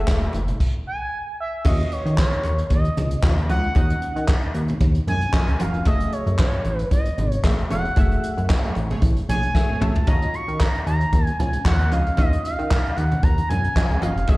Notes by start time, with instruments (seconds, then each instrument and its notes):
Already playing: analog polysynth A3 F#4 G#4 E5
0.08 analog synth bass E1, kick, snare, clap, high conga
0.21 closed hi-hat
0.33 analog synth bass F#1, closed hi-hat, muted conga
0.48 closed hi-hat, low conga
0.60 kick, crash
0.87 analog synth lead G#5
1.40 analog synth lead E5
1.65 analog synth bass D#2, analog polysynth C#4 F4 F#4 D#5, analog synth lead D#5, kick, crash, muted conga
1.80 closed hi-hat
1.92 analog synth lead C#5, closed hi-hat
2.05 analog synth bass D#3, closed hi-hat
2.18 analog synth lead C#5, kick, snare, clap, high conga
2.32 closed hi-hat
2.44 analog synth bass D#2, closed hi-hat, muted conga
2.58 closed hi-hat
2.70 analog synth bass D#2, analog synth lead D#5, kick, closed hi-hat, muted conga
2.84 closed hi-hat
2.97 analog synth bass C#2, closed hi-hat, muted conga, low conga
3.11 closed hi-hat
3.23 analog synth bass D#2, analog polysynth C#4 F4 F#4 D#5, kick, snare, clap, high conga
3.37 closed hi-hat
3.49 analog synth bass C#2, analog polysynth C#4 F4 F#4 D#5, analog synth lead F#5, closed hi-hat, high conga
3.64 closed hi-hat
3.75 analog synth bass D#2, analog polysynth C#4 D#4 F#4 D#5, kick, closed hi-hat, muted conga
3.90 closed hi-hat
4.02 closed hi-hat
4.16 analog synth bass D#3, closed hi-hat
4.28 kick, snare, clap, high conga
4.42 closed hi-hat
4.54 analog synth bass D#2, closed hi-hat
4.68 closed hi-hat, low conga
4.80 analog synth bass D#2, kick, closed hi-hat, muted conga
4.94 closed hi-hat
5.07 analog synth bass F#2, analog synth lead G#5, closed hi-hat, muted conga, low conga
5.21 closed hi-hat
5.33 analog polysynth C#4 F4 F#4 D#5, kick, snare, clap, high conga
5.48 analog synth bass C#2, closed hi-hat
5.59 analog synth bass F#1, analog polysynth C#4 F4 F#4 A#4, analog synth lead F5, closed hi-hat, high conga
5.74 analog synth bass F1, closed hi-hat
5.85 analog synth bass F#1, analog polysynth A3 F#4 G#4 E5, analog synth lead D#5, kick, closed hi-hat, muted conga
6.00 closed hi-hat
6.12 analog synth lead C#5, closed hi-hat
6.26 analog synth bass F#2, closed hi-hat
6.39 analog synth lead C#5, kick, snare, clap, high conga
6.53 closed hi-hat
6.65 analog synth bass A1, closed hi-hat, muted conga
6.79 closed hi-hat
6.91 analog synth bass A1, analog synth lead D#5, kick, closed hi-hat, muted conga
7.05 closed hi-hat
7.18 analog synth bass G#1, closed hi-hat, muted conga, low conga
7.32 closed hi-hat
7.44 analog synth bass A1, analog polysynth A3 F#4 G#4 E5, kick, snare, clap, high conga
7.59 closed hi-hat
7.70 analog synth bass E1, analog polysynth A3 F#4 G#4 C#5, analog synth lead F#5, closed hi-hat, high conga
7.85 closed hi-hat
7.96 analog synth bass F#1, analog polysynth A3 F#4 G#4 E5, kick, closed hi-hat, muted conga
8.11 closed hi-hat
8.23 closed hi-hat
8.38 analog synth bass F#2, closed hi-hat
8.50 kick, snare, clap, high conga
8.64 analog polysynth A3 G#4 C#5, closed hi-hat
8.75 analog synth bass A1, closed hi-hat, muted conga
8.90 analog polysynth A3 G#4 C#5, closed hi-hat, low conga
9.02 analog synth bass A1, kick, closed hi-hat, muted conga
9.16 closed hi-hat
9.29 analog synth bass A#1, analog polysynth A3 G#4 C#5, analog synth lead G#5, closed hi-hat, muted conga, low conga
9.43 closed hi-hat
9.55 analog polysynth A3 F#4 G#4 C#5 E5, kick, snare, high conga
9.69 analog synth bass G#1
9.81 analog synth bass B1, analog polysynth A3 F#4 G#4 E5, analog synth lead A5, mid tom, high conga
9.95 analog synth bass C#2, floor tom
10.07 analog synth bass D#2, analog polysynth C#4 F4 F#4 D#5, analog synth lead A#5, kick, closed hi-hat, muted conga
10.22 closed hi-hat
10.34 analog synth lead C#6, closed hi-hat
10.48 analog synth bass D#3, closed hi-hat
10.60 analog synth lead A#5, kick, snare, clap, high conga
10.74 closed hi-hat
10.86 analog synth bass D#2, analog synth lead A#5, closed hi-hat
11.00 closed hi-hat
11.13 analog synth bass D#2, kick, closed hi-hat, muted conga
11.26 analog synth lead G#5, closed hi-hat
11.39 analog synth bass C#2, analog synth lead G#5, closed hi-hat, muted conga, low conga
11.53 closed hi-hat
11.65 analog synth bass D#2, analog polysynth C#4 F4 F#4 C#5, analog synth lead F#5, kick, snare, clap, high conga
11.80 closed hi-hat
11.92 analog synth bass C#2, analog polysynth C#4 F4 F#4 D#5, analog synth lead F5, closed hi-hat, high conga
12.06 closed hi-hat
12.17 analog synth bass D#2, analog polysynth C#4 F4 F#4 D#5, analog synth lead D#5, kick, closed hi-hat, muted conga
12.33 closed hi-hat
12.44 analog synth lead F5, closed hi-hat
12.59 analog synth bass D#3, closed hi-hat
12.71 kick, snare, clap, high conga
12.85 closed hi-hat
12.96 analog synth bass D#2, analog synth lead F#5, closed hi-hat, muted conga
13.11 closed hi-hat, low conga
13.23 analog synth bass D#2, analog synth lead A#5, kick, closed hi-hat, muted conga
13.38 closed hi-hat
13.49 analog synth bass F#2, analog synth lead G#5, closed hi-hat, muted conga, low conga
13.64 closed hi-hat
13.76 analog polysynth C#4 F4 F#4 D#5, kick, snare, clap, high conga
13.90 analog synth bass C#2, closed hi-hat
14.02 analog synth bass F#1, analog polysynth C#4 F4 F#4 D#5, analog synth lead F5, closed hi-hat, high conga
14.16 analog synth bass F1, closed hi-hat
14.28 analog synth bass F#1, analog polysynth A3 F#4 G#4 E5, analog synth lead D#5, kick, closed hi-hat, muted conga